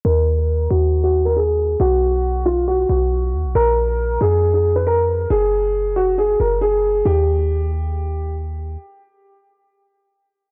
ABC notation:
X:1
M:4/4
L:1/16
Q:1/4=137
K:Ebm
V:1 name="Grand piano"
B6 G3 G2 B A4 | ^F6 =F2 ^F2 F6 | B6 A3 A2 c B4 | A6 G2 A2 B2 A4 |
=G12 z4 | z16 |]
V:2 name="808-style bass" clef=bass
E,,6 E,,8- E,,2 | =B,,,8- B,,,2 B,,,4 ^D,, B,,, | B,,,6 F,,8- F,,2 | G,,,8- G,,,2 G,,,6 |
E,,16 | z16 |]